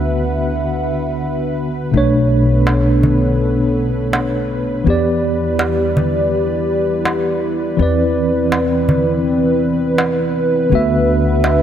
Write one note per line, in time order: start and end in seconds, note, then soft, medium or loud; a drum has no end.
0.00 1.90 D2 medium
0.00 1.88 D3 medium
0.00 1.89 B3 medium
0.00 1.90 D4 medium
0.00 1.90 F#4 medium
0.00 1.89 B4 medium
0.00 11.62 B4 medium
0.00 1.90 E5 medium
0.00 1.91 E5 medium
0.00 1.90 F#5 medium
1.92 4.83 B1 medium
1.92 4.81 B2 medium
1.92 4.82 A3 medium
1.92 4.83 B3 medium
1.92 4.83 D4 medium
1.92 4.83 A4 medium
1.92 4.83 C#5 medium
1.96 4.83 D4 medium
1.96 4.84 C#5 medium
2.67 darbuka tek medium
3.03 darbuka dum medium
4.13 darbuka tek medium
4.84 7.76 E2 medium
4.84 7.74 E3 medium
4.84 7.75 B3 medium
4.84 10.67 E4 medium
4.84 7.76 G4 medium
4.84 7.76 D5 medium
4.90 7.77 D5 medium
5.59 darbuka tek medium
5.97 darbuka dum medium
7.05 darbuka tek medium
7.77 10.68 E2 medium
7.77 10.66 E3 medium
7.77 10.67 C4 medium
7.77 10.69 C4 medium
7.77 11.62 B4 medium
7.77 10.68 B4 medium
7.83 10.69 D5 medium
8.52 darbuka tek medium
8.89 darbuka dum medium
9.98 darbuka tek medium
10.69 11.62 D2 medium
10.69 11.62 D3 medium
10.69 11.62 B3 medium
10.69 11.62 D4 medium
10.69 11.62 F#4 medium
10.69 11.62 E5 medium
10.69 11.62 F#5 medium
10.75 11.62 E5 medium
11.44 darbuka tek medium